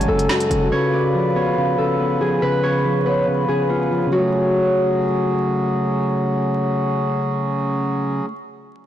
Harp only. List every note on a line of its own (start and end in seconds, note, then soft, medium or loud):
0.00 0.14 G#4 medium
0.00 0.71 C#5 medium
0.08 1.78 A4 medium
0.30 2.73 F#4 medium
0.72 0.99 C#5 loud
0.93 1.42 D5 medium
1.36 2.63 C#5 medium
1.78 2.27 A4 medium
2.21 3.48 G#4 medium
2.42 3.05 B4 loud
2.63 4.55 C#5 medium
3.06 5.11 B4 medium
3.48 5.76 G#4 medium
3.70 4.18 F4 medium
4.12 6.56 F#4 medium